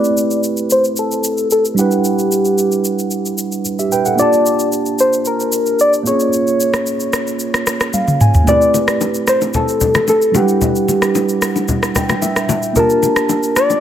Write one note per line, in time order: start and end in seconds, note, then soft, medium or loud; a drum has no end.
0.00 1.72 A3 medium
0.00 1.73 C4 medium
0.00 1.74 E4 medium
0.00 1.75 G4 medium
0.00 1.76 B4 medium
0.00 0.40 D5 loud
0.04 shaker soft
0.17 shaker medium
0.31 shaker soft
0.44 shaker medium
0.57 shaker soft
0.70 0.84 C5 loud
0.70 shaker medium
0.84 shaker soft
0.97 1.48 A4 loud
0.97 shaker medium
1.12 shaker soft
1.24 shaker loud
1.38 shaker medium
1.51 1.64 A4 loud
1.51 shaker medium
1.65 shaker soft
1.74 3.86 G3 medium
1.74 3.87 D4 medium
1.74 3.88 E4 medium
1.74 shaker medium
1.79 3.35 G4 medium
1.79 3.63 B4 medium
1.79 3.62 F#5 medium
1.91 shaker soft
2.05 shaker medium
2.19 shaker soft
2.32 shaker medium
2.45 shaker soft
2.58 shaker medium
2.72 shaker soft
2.85 shaker medium
2.99 shaker soft
3.11 shaker medium
3.26 shaker soft
3.38 shaker loud
3.52 shaker soft
3.65 shaker medium
3.79 3.91 G4 medium
3.79 3.91 E5 medium
3.79 shaker medium
3.92 4.06 B4 medium
3.92 4.05 G5 medium
3.92 shaker medium
4.06 4.32 A4 medium
4.06 4.31 F#5 medium
4.06 shaker soft
4.15 6.01 A#3 medium
4.15 6.02 D4 medium
4.15 6.02 F4 medium
4.15 shaker medium
4.19 6.03 G4 medium
4.19 4.69 D5 loud
4.19 6.04 A5 medium
4.33 shaker soft
4.46 shaker medium
4.59 shaker medium
4.72 shaker medium
4.86 shaker soft
4.99 5.29 C5 medium
4.99 shaker medium
5.13 shaker soft
5.25 5.80 A#4 medium
5.25 shaker medium
5.40 shaker soft
5.52 shaker loud
5.66 shaker medium
5.79 5.93 D5 loud
5.79 shaker medium
5.93 shaker soft
6.03 8.15 A#3 medium
6.03 6.12 C4 soft
6.03 8.17 F4 medium
6.03 shaker medium
6.07 8.19 C#4 medium
6.07 8.17 G#4 medium
6.07 7.63 C#5 loud
6.07 8.18 C#5 medium
6.20 shaker medium
6.33 shaker medium
6.47 shaker soft
6.60 shaker medium
6.74 cross-stick medium
6.74 shaker medium
6.87 shaker medium
7.00 shaker soft
7.13 cross-stick medium
7.13 shaker medium
7.27 shaker soft
7.40 shaker medium
7.54 cross-stick medium
7.54 shaker soft
7.67 cross-stick medium
7.67 shaker loud
7.80 cross-stick medium
7.80 shaker medium
7.94 8.19 F5 medium
7.94 high tom medium
7.94 shaker medium
8.08 mid tom medium
8.08 shaker soft
8.21 8.46 G#5 medium
8.21 mid tom medium
8.21 shaker medium
8.34 floor tom medium
8.34 shaker soft
8.44 10.29 A3 medium
8.44 10.30 C4 medium
8.44 10.31 E4 medium
8.44 low conga medium
8.44 shaker medium
8.49 10.32 G4 medium
8.49 10.33 B4 medium
8.49 8.98 D5 loud
8.62 shaker soft
8.74 low bongo soft
8.74 shaker medium
8.88 cross-stick medium
8.88 shaker soft
9.01 high bongo medium
9.01 shaker medium
9.15 shaker soft
9.27 9.41 C5 loud
9.27 cross-stick medium
9.27 shaker medium
9.41 high bongo soft
9.41 shaker soft
9.54 10.05 A4 loud
9.54 low conga medium
9.54 shaker medium
9.69 shaker soft
9.81 low conga medium
9.81 shaker loud
9.95 cross-stick medium
9.95 low bongo medium
9.95 shaker soft
10.08 10.37 A4 loud
10.08 high bongo medium
10.08 shaker medium
10.22 shaker soft
10.31 10.40 F#3 soft
10.31 12.44 D4 medium
10.31 12.45 E4 medium
10.31 low bongo medium
10.31 shaker medium
10.36 12.46 G3 medium
10.36 11.96 G4 medium
10.36 12.47 B4 medium
10.36 12.46 F#5 medium
10.48 shaker medium
10.61 low conga medium
10.61 shaker medium
10.76 shaker soft
10.88 low bongo medium
10.88 shaker medium
11.02 cross-stick medium
11.02 shaker soft
11.15 high bongo medium
11.15 shaker medium
11.29 shaker soft
11.42 cross-stick medium
11.42 shaker medium
11.56 high bongo soft
11.56 shaker soft
11.68 low conga medium
11.68 shaker medium
11.83 cross-stick medium
11.83 shaker soft
11.95 12.20 G5 medium
11.95 cross-stick medium
11.95 low conga medium
11.95 shaker loud
12.09 cross-stick medium
12.09 low bongo medium
12.09 shaker medium
12.22 12.72 E5 medium
12.22 high bongo medium
12.22 shaker medium
12.36 cross-stick medium
12.36 shaker soft
12.49 low bongo medium
12.49 shaker medium
12.63 shaker medium
12.73 13.80 A#3 medium
12.73 13.80 D4 medium
12.73 13.80 F4 medium
12.73 low conga medium
12.73 shaker medium
12.77 13.80 G4 medium
12.77 13.59 A#4 loud
12.77 13.80 A5 medium
12.90 shaker soft
13.03 low bongo soft
13.03 shaker medium
13.16 cross-stick medium
13.16 shaker soft
13.29 high bongo medium
13.29 shaker medium
13.43 shaker soft
13.56 13.80 D5 loud
13.56 cross-stick medium
13.56 shaker medium
13.70 high bongo soft
13.70 shaker soft